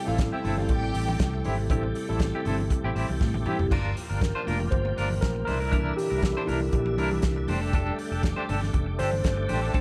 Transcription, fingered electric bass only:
0.08 0.28 A1 medium
0.45 0.70 G1 medium
0.70 0.91 A1 loud
0.95 1.16 A1 medium
1.20 1.41 C2 medium
1.46 1.67 G#1 loud
1.70 1.91 A1 loud
2.10 2.30 A1 medium
2.45 2.66 G1 medium
2.84 2.94 A1 medium
2.96 3.07 A1 medium
3.09 3.19 C2 medium
3.21 3.32 A2 medium
3.35 3.44 A1 medium
3.60 3.69 F#1 loud
3.71 3.92 G1 medium
4.10 4.31 G1 medium
4.47 4.68 F1 medium
4.72 4.93 G1 loud
4.98 5.19 G1 medium
5.23 5.44 A#1 medium
5.49 5.90 C2 loud
6.12 6.32 C2 medium
6.48 6.69 C2 medium
6.74 6.98 A#1 loud
6.98 7.19 C2 medium
7.24 7.45 C2 medium
7.48 7.90 F1 medium
8.11 8.33 F1 medium
8.49 8.70 G1 loud
8.74 9.00 F1 medium
9.00 9.21 G1 medium
9.25 9.46 G1 medium
9.50 9.71 A1 medium
9.74 9.81 A#1 loud

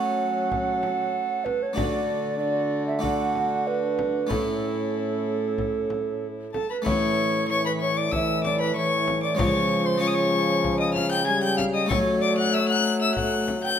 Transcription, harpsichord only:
0.00 1.45 F#3 medium
0.00 1.71 A3 medium
0.00 1.72 C#4 medium
0.00 1.72 F#4 medium
1.73 4.27 D3 medium
1.73 2.97 A3 soft
1.73 2.98 D4 soft
1.73 2.99 F#4 medium
2.99 4.25 A3 soft
2.99 4.25 D4 soft
2.99 4.26 F#4 soft
4.27 6.50 A2 soft
4.27 6.80 A3 soft
4.27 6.81 C#4 soft
4.27 6.81 E4 soft
6.82 9.33 A3 medium
6.82 9.33 C#4 medium
6.82 9.34 E4 medium
6.86 9.35 A2 medium
9.35 11.86 C#3 medium
9.35 9.96 G#3 medium
9.35 9.98 C#4 medium
9.35 9.99 F4 medium
9.98 11.84 G#3 medium
9.98 11.85 C#4 medium
9.98 11.86 F4 medium
11.86 13.79 F#3 medium
11.86 13.79 A3 medium
11.86 13.79 C#4 medium
11.86 13.79 A4 medium

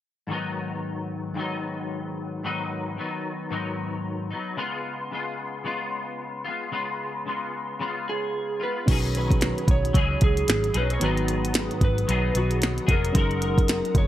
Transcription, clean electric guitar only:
0.27 1.33 G#2 medium
0.27 1.34 D#3 medium
0.27 1.36 F#3 medium
0.32 1.38 B3 medium
0.32 1.38 D#4 medium
1.34 2.42 G#2 medium
1.34 2.43 D#3 medium
1.34 2.44 F#3 medium
1.38 2.45 B3 medium
1.38 2.45 D#4 medium
2.44 2.97 G#2 medium
2.44 2.96 D#3 medium
2.44 2.97 F#3 medium
2.44 2.99 B3 medium
2.44 2.99 D#4 medium
2.97 3.49 D#3 soft
2.97 3.50 F#3 medium
2.97 3.52 B3 medium
2.97 3.51 D#4 medium
3.50 4.31 G#2 medium
3.50 4.32 D#3 medium
3.50 4.32 F#3 medium
3.50 4.32 B3 medium
3.50 4.29 D#4 medium
4.31 4.57 F#3 soft
4.31 4.57 B3 soft
4.31 4.58 D#4 soft
4.57 5.10 C#3 medium
4.57 5.12 G#3 medium
4.57 5.13 B3 medium
4.57 5.13 F4 medium
5.11 5.63 C#3 medium
5.11 5.65 G#3 medium
5.11 5.65 B3 medium
5.11 5.65 F4 medium
5.64 6.45 C#3 medium
5.64 6.47 G#3 medium
5.64 6.46 B3 medium
5.64 6.43 F4 medium
6.45 6.71 G#3 soft
6.45 6.72 B3 soft
6.45 6.72 F4 soft
6.72 7.24 C#3 medium
6.72 7.26 G#3 medium
6.72 7.27 B3 medium
6.72 7.27 F4 medium
7.25 7.78 C#3 medium
7.25 7.80 G#3 medium
7.25 7.81 B3 medium
7.25 7.81 F4 medium
7.79 8.60 C#3 medium
7.79 8.63 G#3 medium
7.79 8.61 B3 medium
7.79 8.59 F4 medium
8.60 8.88 G#3 soft
8.60 8.88 B3 soft
8.60 8.87 F4 soft
8.86 9.94 B2 medium
8.86 9.98 D#3 medium
8.86 9.93 F#3 medium
8.86 9.94 C#4 medium
8.91 9.95 D#4 medium
8.91 9.96 G#4 medium
9.93 10.77 F#3 medium
9.93 10.75 C#4 medium
9.93 10.75 D#4 medium
9.93 10.73 G#4 medium
10.74 11.01 F#3 soft
10.74 11.02 C#4 medium
10.74 11.02 D#4 soft
10.74 11.01 G#4 medium
10.99 12.07 G#2 medium
10.99 13.12 D#3 medium
10.99 12.06 F#3 medium
10.99 12.07 B3 medium
11.04 12.09 D#4 medium
11.04 12.10 G#4 medium
12.07 12.90 F#3 medium
12.07 12.88 B3 medium
12.07 12.88 D#4 medium
12.07 12.86 G#4 medium
12.87 13.11 F#3 soft
12.87 13.15 B3 medium
12.87 13.14 D#4 soft
12.87 13.14 G#4 medium
13.13 14.07 F#3 medium
13.13 14.07 G#3 medium
13.13 14.07 D#4 medium
13.17 14.07 F#4 medium
13.17 14.07 A#4 medium

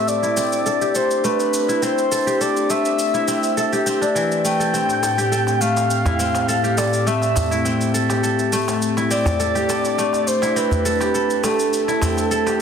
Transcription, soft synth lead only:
0.08 0.97 D5 loud
0.95 1.26 C5 medium
1.24 1.83 B4 medium
1.83 2.42 C5 medium
2.41 2.71 D5 loud
2.70 3.86 E5 loud
4.45 5.62 G5 loud
5.60 6.79 F5 loud
6.77 7.08 D5 medium
7.07 7.65 E5 medium
9.10 10.29 D5 loud
10.27 10.58 C5 medium
10.56 11.14 B4 medium
11.15 11.45 B4 medium
11.44 12.62 A4 medium

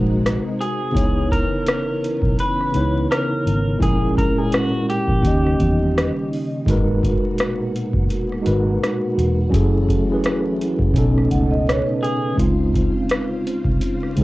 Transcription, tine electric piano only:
0.00 0.75 G#3 medium
0.00 0.75 D#4 medium
0.00 0.76 F#4 medium
0.00 0.77 A#4 medium
0.00 0.77 C5 medium
0.91 2.17 C#3 medium
0.91 2.17 B3 medium
0.91 2.18 D#4 medium
0.91 2.18 E4 medium
0.96 2.19 C#5 loud
2.72 3.66 C#3 medium
2.72 3.66 B3 medium
2.72 3.67 D#4 medium
2.72 3.68 E4 medium
2.77 3.68 C#5 medium
3.77 4.26 A#2 loud
3.77 4.26 G#3 medium
3.77 4.27 C#4 medium
3.77 4.28 E4 medium
3.83 4.28 A#4 loud
4.35 5.23 A#2 medium
4.35 5.23 G#3 medium
4.35 5.24 C#4 medium
4.35 5.25 E4 medium
4.40 5.25 A#4 medium
5.22 6.46 D#3 medium
5.22 6.47 A#3 medium
5.22 6.47 C#4 medium
5.22 6.48 G4 medium
5.27 6.49 D#5 medium
6.66 7.89 G#3 loud
6.66 7.90 D#4 medium
6.66 7.91 F#4 medium
6.66 7.91 A#4 loud
6.71 7.92 B4 loud
8.42 9.37 G#3 medium
8.42 9.37 D#4 medium
8.42 9.38 F#4 medium
8.42 9.38 A#4 medium
8.47 9.39 B4 loud
9.50 9.98 F#3 loud
9.50 9.98 C#4 loud
9.50 9.99 E4 medium
9.50 10.00 G#4 medium
9.54 10.00 A4 loud
10.08 10.95 F#3 medium
10.08 10.94 C#4 medium
10.08 10.96 E4 medium
10.08 10.97 G#4 medium
10.13 10.97 B4 loud
10.93 12.17 B2 loud
10.93 12.18 B3 medium
10.93 12.18 C#4 medium
10.93 12.19 D#4 medium
10.98 12.20 A4 loud
12.34 13.59 C#3 medium
12.34 13.60 G#3 medium
12.34 13.60 C4 medium
12.34 13.61 D#4 medium
12.39 13.62 F4 loud
14.15 14.24 C#3 medium
14.15 14.24 G#3 medium
14.15 14.24 C4 medium
14.15 14.24 D#4 medium
14.21 14.24 G#4 medium

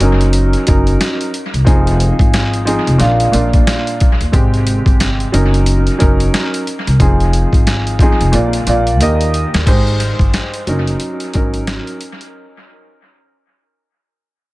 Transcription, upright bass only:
0.00 0.54 F#1 loud
0.68 0.95 F#1 loud
1.54 1.64 C2 medium
1.67 2.10 F1 loud
2.19 2.73 G#1 medium
2.87 2.98 F1 medium
3.00 3.27 A#1 loud
3.33 3.60 A#1 medium
4.20 4.31 D#2 medium
4.33 4.76 G#1 loud
4.86 5.24 G1 medium
5.33 5.87 F#1 loud
6.02 6.28 F#1 loud
6.87 7.01 C2 medium
7.00 7.43 F1 loud
7.53 8.07 G#1 medium
8.20 8.31 F1 medium
8.34 8.60 A#1 loud
8.67 9.00 A#1 medium
9.00 9.43 D#2 loud
9.54 9.64 D#2 medium
9.67 10.10 G#1 loud
10.19 10.30 G1 medium
10.67 10.94 F#1 loud
11.35 11.78 G#1 medium

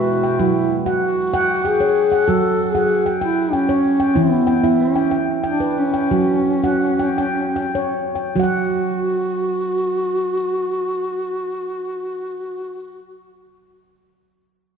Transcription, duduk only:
0.00 0.43 F#4 medium
0.41 0.76 E4 medium
1.04 1.68 F#4 medium
1.67 2.31 G#4 medium
2.30 2.64 A4 medium
2.64 2.72 A4 medium
2.70 3.12 G#4 medium
3.23 3.55 E4 medium
3.53 4.18 C#4 medium
4.17 4.82 B3 medium
4.80 5.16 C#4 medium
5.46 5.80 D4 medium
5.79 7.96 C#4 medium
8.37 13.07 F#4 medium

